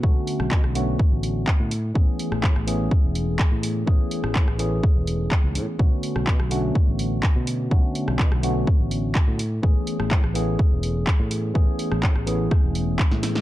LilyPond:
<<
  \new Staff \with { instrumentName = "Tine electric piano" } { \time 4/4 \key a \major \tempo 4 = 125 <d a b cis' fis'>4. <d a b cis' fis'>2 r8 | <e a b cis' gis'>4. <e a b cis' gis'>2~ <e a b cis' gis'>8 | <e a b cis' gis'>4. <e a b cis' gis'>2~ <e a b cis' gis'>8 | <d a b cis' fis'>4. <d a b cis' fis'>2~ <d a b cis' fis'>8 |
<d a b cis' fis'>4. <d a b cis' fis'>2 r8 | <e a b cis' gis'>4. <e a b cis' gis'>2~ <e a b cis' gis'>8 | <e a b cis' gis'>4. <e a b cis' gis'>2~ <e a b cis' gis'>8 | }
  \new Staff \with { instrumentName = "Fingered electric bass" } { \clef bass \time 4/4 \key a \major b,,16 r8 b,,16 b,16 b,,8. r16 a,,8. r16 a,8. | a,,16 r8 a,,16 a,16 a,,8. r16 e,,8. r16 a,8. | a,,16 r8 a,,16 a,16 a,,8. r16 e,,8. r16 cis,16 a,16 r16 | b,,16 r8 b,,16 b,16 b,,8. r16 a,,8. r16 b,8. |
b,,16 r8 b,,16 b,16 b,,8. r16 a,,8. r16 a,8. | a,,16 r8 a,,16 a,16 a,,8. r16 e,,8. r16 a,8. | a,,16 r8 a,,16 a,16 a,,8. r16 e,,8. r16 a,8. | }
  \new DrumStaff \with { instrumentName = "Drums" } \drummode { \time 4/4 bd8 hho16 ss16 <hc bd>16 ss16 hho8 bd8 hho8 <hc bd>8 hho8 | bd8 hho16 ss16 <hc bd>16 ss16 hho8 bd8 hho8 <hc bd>8 hho8 | bd8 hho16 ss16 <hc bd>16 ss16 hho8 bd8 hho8 <hc bd>8 hho8 | bd8 hho16 ss16 <hc bd>16 ss16 hho8 bd8 hho8 <hc bd>8 hho8 |
bd8 hho16 ss16 <hc bd>16 ss16 hho8 bd8 hho8 <hc bd>8 hho8 | bd8 hho16 ss16 <hc bd>16 ss16 hho8 bd8 hho8 <hc bd>8 hho8 | bd8 hho16 ss16 <hc bd>16 ss16 hho8 <bd ss>8 hho8 <hc bd>16 sn16 <hho sn>16 sn16 | }
>>